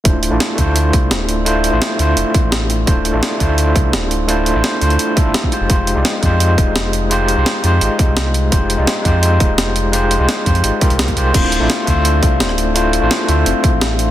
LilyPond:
<<
  \new Staff \with { instrumentName = "Harp" } { \time 4/4 \key d \minor \tempo 4 = 170 r1 | r1 | r1 | r1 |
r1 | r1 | r1 | r1 |
c'8 r8 f'8 r8 f'8 r8 c'8 r8 | f'8 r8 f'8 r8 c'8 r8 f'8 r8 | }
  \new Staff \with { instrumentName = "Tine electric piano" } { \time 4/4 \key d \minor <a d' e' f' c''>8. <a d' e' f' d''>16 r8 <a d' e' f' c''>2~ <a d' e' f' c''>8 | <a d' e' f' c''>8. <a d' e' f' c''>8. <a d' e' f' c''>2~ <a d' e' f' c''>8 | <a d' e' f' c''>8. <a d' e' f' d''>16 r8 <a d' e' f' c''>2~ <a d' e' f' c''>8 | <a d' e' f' c''>8. <a d' e' f' c''>8. <a d' e' f' c''>4 <a d' e' f' a'>4 <aes ees' f' g' c''>8 |
<aes ees' f' g' c''>8. <aes ees' f' g' d''>16 r8 <aes ees' f' g' c''>2~ <aes ees' f' g' c''>8 | <aes ees' f' g' c''>8. <aes ees' f' g' c''>8. <aes ees' f' g' c''>2~ <aes ees' f' g' c''>8 | <aes ees' f' g' c''>8. <aes ees' f' g' d''>16 r8 <aes ees' f' g' c''>2~ <aes ees' f' g' c''>8 | <aes ees' f' g' c''>8. <aes ees' f' g' c''>8. <aes ees' f' g' c''>4 <aes ees' f' g' bes'>4 <aes ees' f' g' c''>8 |
<a d' e' f'>8. <a d' e' f' d''>16 r8 <a d' f' c'' e''>2~ <a d' f' c'' e''>8 | <a d' e' f' c''>8. <a d' e' f' c''>8. <a d' f' c'' e''>2~ <a d' f' c'' e''>8 | }
  \new Staff \with { instrumentName = "Sub bass" } { \clef bass \time 4/4 \key d \minor d,,8. a,,16 r8 d,4 c,8 d,,4~ | d,,8. a,,16 r8 d,8 f,,16 r8 a,,4~ a,,16 | d,,8. a,,16 r8 d,4 c,8 d,,4~ | d,,8. a,,16 r8 d,8 r8. g,,16 r8. f,,16 |
f,,8. c,16 r8 f,4 ees,,8 f,,4~ | f,,8. c,16 r8 f,8 aes,,16 r8 c,4~ c,16 | f,,8. c,16 r8 f,4 ees,,8 f,,4~ | f,,8. c,16 r8 f,8 aes,,16 r8 c,8. c,8 |
d,,8. a,,16 r8 d,4 c,8 d,,4~ | d,,8. a,,16 r8 d,8 f,,16 r8 a,,4~ a,,16 | }
  \new DrumStaff \with { instrumentName = "Drums" } \drummode { \time 4/4 <hh bd>8 hh8 <hh sn>8 <hh bd>8 hh8 <hh bd>8 <hh sn>8 hh8 | hh8 hh8 <hh sn>8 hh8 hh8 <hh bd>8 <hh sn>8 hh8 | <hh bd>8 hh8 <hh sn>8 <hh bd>8 hh8 <hh bd>8 <hh sn>8 hh8 | hh8 hh8 <hh sn>8 hh16 hh16 hh8 <hh bd>8 <hh sn>16 bd16 hh8 |
<hh bd>8 hh8 <hh sn>8 <hh bd>8 hh8 <hh bd>8 <hh sn>8 hh8 | hh8 hh8 <hh sn>8 hh8 hh8 <hh bd>8 <hh sn>8 hh8 | <hh bd>8 hh8 <hh sn>8 <hh bd>8 hh8 <hh bd>8 <hh sn>8 hh8 | hh8 hh8 <hh sn>8 <hh bd>16 hh16 hh8 <hh bd>16 hh16 <hh sn>16 <hh bd>16 hh8 |
<cymc hh bd>8 hh8 <hh sn>8 <hh bd>8 hh8 <hh bd>8 <hh sn>16 ss16 hh8 | hh8 hh8 <hh sn>8 hh8 hh8 <hh bd>8 <hh sn>8 hh8 | }
>>